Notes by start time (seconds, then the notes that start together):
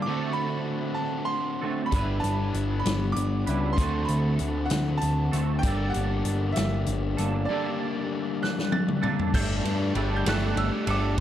0.02 D6
0.07 D3 A3 C4 F#4 A4
0.33 B5
0.95 A5
1.25 C6
1.61 D3 A3 C4 F#4 A4
1.86 B5
1.92 G1 G3 B3 D4 E4, kick, closed hi-hat
1.96 B4
2.20 G1 A5, closed hi-hat
2.54 G1, closed hi-hat
2.79 B5
2.85 G1, snare, closed hi-hat
3.12 D6
3.16 G1, closed hi-hat
3.47 C#2 G3 D4 E4 B4, closed hi-hat
3.73 C6
3.78 D2 D3 A3 C4 F#4 A4, kick, closed hi-hat
4.05 B5, closed hi-hat
4.09 D2
4.39 D2, closed hi-hat
4.65 F#5
4.70 D2, snare, closed hi-hat
4.98 A5, closed hi-hat
5.02 D2
5.32 D2 D3 A3 C4 F#4 A4, closed hi-hat
5.59 G2 D3 G5
5.63 G1 G3 A#3 D4 G4 A4, kick, closed hi-hat
5.90 F#5
5.94 G1, closed hi-hat
6.25 G1, closed hi-hat
6.52 E5, closed hi-hat
6.57 G1, snare
6.86 G1, closed hi-hat
7.17 G1 G3 A#3 D4 A4, closed hi-hat
7.45 G2 D3 G3 D5
7.50 A#3 D4 G4 A4
8.43 F#6, snare
8.59 snare
8.72 A6, high tom
8.88 mid tom
9.02 G3 A#3 D4 A4 A6, mid tom
9.19 floor tom
9.33 G1 G3 A3 D4 G4 A4 G6, kick, crash
9.65 G2, ride
9.95 G1 G3 A3 D4 G4 A4, ride
10.16 G6
10.26 G1 G3 A3 D4 G4 A4 F#6, snare, ride
10.56 G1 E6, ride
10.86 G1 G3 A3 D4 G4 A4, ride
10.90 D6